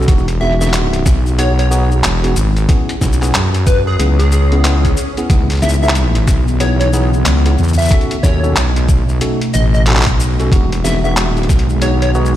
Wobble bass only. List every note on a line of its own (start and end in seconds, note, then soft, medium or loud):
0.08 1.04 E1 loud
1.06 2.02 B1 loud
2.04 2.34 E1 loud
2.36 2.67 G#1 loud
3.02 3.32 B1 loud
3.34 3.97 F#2 loud
3.99 4.95 C#2 loud
5.30 6.26 C#2 medium
6.27 7.23 B1 loud
7.26 7.56 C#2 loud
7.59 7.89 E2 loud
8.23 8.54 D#2 loud
8.57 9.20 B1 loud
9.55 10.04 A1 loud
10.07 10.50 B1 loud
10.52 11.20 E1 medium
11.20 11.47 D#1 medium
11.49 12.36 B1 loud